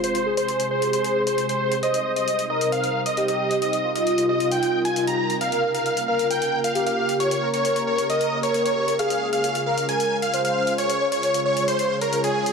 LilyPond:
<<
  \new Staff \with { instrumentName = "Supersaw synth" } { \time 4/4 \key bes \dorian \tempo 4 = 134 c''8. c''8. c''8 c''8. c''8 c''8. | ees''8. ees''8. ees''8 f''8. ees''8 ees''8. | ees''8. ees''8. ees''8 g''8. aes''8 bes''8. | f''8. f''8. f''8 g''8. f''8 f''8. |
des''8. des''8. des''8 ees''8. des''8 des''8. | f''8. f''8. f''8 aes''8. f''8 f''8. | des''8. des''8. des''8 c''8. bes'8 aes'8. | }
  \new Staff \with { instrumentName = "Soft synth lead" } { \time 4/4 \key bes \dorian f'8 aes'2.~ aes'8 | c''4. bes'4. g'4~ | g'8 f'2.~ f'8 | bes'4. bes'4. g'4~ |
g'8 bes'2.~ bes'8 | aes'4. bes'4. c''4~ | c''8 des''2.~ des''8 | }
  \new DrumStaff \with { instrumentName = "Drums" } \drummode { \time 4/4 hh16 hh8 hh16 hh16 hh8 hh16 hh16 hh8 hh16 hh16 hh8 hh16 | hh16 hh8 hh16 hh16 hh8 hh16 hh16 hh8 hh16 hh16 hh8 hh16 | hh16 hh8 hh16 hh16 hh8 hh16 hh16 hh8 hh16 hh16 hh8 hh16 | hh16 hh8 hh16 hh16 hh8 hh16 hh16 hh8 hh16 hh16 hh8 hh16 |
hh16 hh8 hh16 hh16 hh8 hh16 hh16 hh8 hh16 hh16 hh8 hh16 | hh16 hh8 hh16 hh16 hh8 hh16 hh16 hh8 hh16 hh16 hh8 hh16 | hh16 hh8 hh16 hh16 hh8 hh16 hh16 hh8 hh16 hh16 hh8 hh16 | }
>>